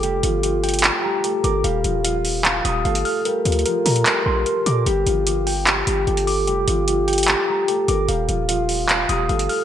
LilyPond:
<<
  \new Staff \with { instrumentName = "Tine electric piano" } { \time 4/4 \key g \minor \tempo 4 = 149 <g' d'''>4 g'8 g''8 g'8 bes''8 g'8 d'''8 | f''4 f''4 f''8 ees'''8 f''8 f'''8 | bes'4 bes'8 bes''8 bes'8 c'''8 bes'8 d'''8 | g'4 g'8 g''8 g'4 g'8 d'''8 |
g'4 g'8 g''8 g'8 bes''8 g'8 d'''8 | f''4 f''4 f''8 ees'''8 f''8 f'''8 | }
  \new Staff \with { instrumentName = "Harp" } { \time 4/4 \key g \minor <g g'>8 <f f'>8 <f f'>4 g8 <g g'>8 <a a'>8 <bes bes'>8 | <g g'>8 <f f'>8 <f f'>4 r8 <g g'>8 <a a'>4 | <g g'>8 <f f'>8 <f f'>4 <g g'>8 <g g'>8 <a a'>8 <bes bes'>8 | <g g'>8 <f f'>8 <f f'>4 r8 <g g'>8 <a a'>4 |
<g g'>8 <f f'>8 <f f'>4 <g g'>8 <g g'>8 <a a'>8 <bes bes'>8 | <g g'>8 <f f'>8 <f f'>4 r8 <g g'>8 <a a'>4 | }
  \new Staff \with { instrumentName = "808-style bass" } { \clef bass \time 4/4 \key g \minor f,,8 g,,4.~ g,,16 r4 r16 g,,8 | ees,,8 ees,,2 ees,,8 g,,8 r8 | r8 d,8 r8 bes,8 r8 bes,,8 r8 bes,8 | g,,8 g,,2 g,,8 g,,4 |
f,,8 g,,4.~ g,,16 r4 r16 g,,8 | ees,,8 ees,,2 ees,,8 g,,8 r8 | }
  \new DrumStaff \with { instrumentName = "Drums" } \drummode { \time 4/4 hh8 hh8 hh8 hh32 hh32 hh32 hh32 <hc hh>4 hh8 hh8 | hh8 hh8 hh8 hho8 <hc hh>8 hh8 hh16 hh16 hho8 | \tuplet 3/2 { hh16 r16 r16 hh16 hh16 hh16 } hh8 <hh hho>16 hh16 <hc hh>4 hh8 hh8 | hh8 hh8 hh8 hho8 <hc hh>8 hh8 hh16 hh16 hho8 |
hh8 hh8 hh8 hh32 hh32 hh32 hh32 hc4 hh8 hh8 | hh8 hh8 hh8 hho8 <hc hh>8 hh8 hh16 hh16 hho8 | }
>>